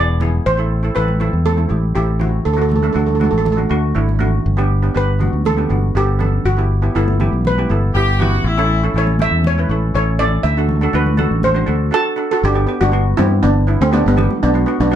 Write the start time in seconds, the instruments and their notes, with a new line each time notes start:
Already playing: fingered electric bass E1, steel pan B3 E4 G#4 D5
0.20 steel pan B3 E4 G#4, low conga
0.46 fingered electric bass A1, steel pan C5
0.57 steel pan C4 E4 A4
0.83 steel pan C4 E4 A4
0.95 fingered electric bass A1, steel pan C4 E4 A4 B4
1.08 high conga
1.20 steel pan C4 E4 A4, high conga
1.33 fingered electric bass E2
1.46 steel pan A4, high conga, low conga
1.57 steel pan C4 E4 A4
1.69 fingered electric bass A1, steel pan C4 E4 G4
1.95 fingered electric bass A1, steel pan C4 E4 G4 A4
2.19 steel pan C4 E4 F#4, low conga
2.45 fingered electric bass D2, steel pan A4
2.54 steel pan A3 D4 A4
2.58 steel pan F#4 A4
2.69 steel pan A4, high conga, low conga
2.76 steel pan A4
2.82 steel pan A3 D4 A4
2.93 fingered electric bass D2, steel pan A3 D4 F#4 A4
2.99 steel pan A4
3.06 steel pan A4, high conga
3.15 steel pan A4
3.20 steel pan A3 D4 F#4 A4, high conga, low conga
3.31 fingered electric bass A1, steel pan A4
3.38 steel pan A4
3.45 steel pan A4, high conga, low conga
3.52 steel pan A4
3.57 steel pan A3 D4 F#4
3.69 fingered electric bass D2, steel pan A3 D4 F#4
3.95 fingered electric bass G#1, steel pan A3 D4 E4
4.09 high conga
4.19 steel pan A3 D4 F#4, low conga
4.46 fingered electric bass G1
4.57 steel pan B3 D4 G4
4.82 steel pan B3 D4 G4
4.94 fingered electric bass G1, steel pan B3 D4 G4 B4
5.19 steel pan B3 D4 F#4, high conga, low conga
5.33 fingered electric bass D2
5.45 steel pan A4, high conga, low conga
5.57 steel pan B3 D4 G4
5.69 fingered electric bass G1, steel pan B3 D4 F#4
5.95 fingered electric bass G1, steel pan B3 D4 G4 A4
6.19 steel pan B3 D4 A4, low conga
6.45 fingered electric bass G1, steel pan F#4
6.57 steel pan B3 E4 G4
6.82 steel pan B3 E4 G4
6.95 fingered electric bass G1, steel pan B3 E4 A4
7.08 high conga
7.20 steel pan B3 E4 G4, high conga, low conga
7.33 fingered electric bass B1
7.45 steel pan B4, high conga, low conga
7.58 steel pan B3 E4 G4
7.70 fingered electric bass G1, steel pan B3 E4 A4
7.94 fingered electric bass G1, steel pan B3 E4 G4, horn section G4
8.19 steel pan B3 E4 G4, horn section F#4, low conga
8.44 fingered electric bass A1, horn section E4
8.58 steel pan C#4 E4 A4
8.83 steel pan C#4 E4 A4
8.94 fingered electric bass A1, steel pan C#4 E4 A4 C#5
9.07 high conga
9.19 steel pan C#4 E4 A4 E5, high conga, low conga
9.31 fingered electric bass E2
9.44 steel pan C#5, high conga, low conga
9.58 steel pan C#4 E4 B4
9.69 fingered electric bass A1, steel pan C#4 E4 A4
9.94 fingered electric bass A1, steel pan C#4 E4 A4 C#5
10.19 steel pan C#4 E4 A4 D5, low conga
10.43 fingered electric bass D2, steel pan E5
10.57 steel pan D4 F#4 A4
10.69 high conga, low conga
10.81 steel pan D4 F#4 A4
10.93 fingered electric bass D2, steel pan D4 F#4 B4
11.06 high conga
11.17 steel pan D4 F#4 A4, high conga, low conga
11.31 fingered electric bass A1
11.43 steel pan C5, high conga, low conga
11.54 steel pan D4 F#4 C5
11.66 fingered electric bass D2, steel pan D4 F#4 A4
11.91 steel pan D4 F#4 A4 A5
11.95 steel pan F#4
12.16 steel pan D4 F#4 A4
12.31 steel pan F#4 A4
12.43 fingered electric bass G1, steel pan D4 G4
12.54 steel pan B3 D4 G4
12.67 steel pan B3 D4 G4
12.81 fingered electric bass G1, steel pan D4 F#4, high conga
12.92 steel pan B3 D4 F#4
13.17 fingered electric bass G2, steel pan B3 C4 D4 E4 G4, low conga
13.43 fingered electric bass G1, steel pan B3 D4
13.67 steel pan B3 D4 E4
13.81 fingered electric bass D2, steel pan A3 C4
13.91 steel pan B3 D4 G4, high conga
14.06 fingered electric bass G1, steel pan G3 B3
14.16 steel pan B3 D4 G4, low conga
14.30 high conga
14.43 fingered electric bass B1, steel pan B3 D4
14.54 steel pan B3 D4 F#4
14.66 steel pan B3 D4 F#4
14.80 fingered electric bass B1, steel pan B3 D4, high conga
14.91 steel pan B3 D4 F#4